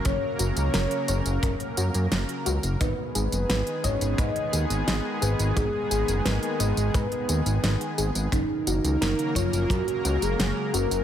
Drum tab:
HH |x-xxxxxxxxxxxxxx|x-xxxxxxxxxxx-xx|x-xxxxxxxxxxxxxx|x-xxxxxxxxxxx-xx|
TB |x-xxx-xxx-xxx-xx|x-xxx-xxx-xxx-xx|x-xxx-xxx-xxx-xx|x-xxx-xxx-xxx-xx|
SD |----o-------o---|----o-------o---|----o-------o---|----o-------o---|
BD |o-------o-------|o-----o-o-------|o-------o-------|o-----o-o-------|